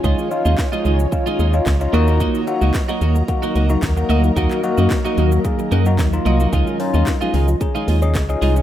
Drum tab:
HH |----------------|x-x-x-x-x-x-x-x-|x-x-x-x-x-x-x-x-|x-o-x-o-x-o-x-o-|
SH |xxxxxxxxxxxxxxxx|xxxxxxxxxxxxxxxx|xxxxxxxxxxxxxxxx|xxxxxxxxxxxxxxxx|
CP |----x-------x---|----x-------x---|-x--x-------x---|----x-------x---|
SD |----o-------o---|----o-------o---|----o-------o---|----o-------o---|
BD |o---o---o---o---|o---o---o---o---|o---o---o---o---|o---o---o---o---|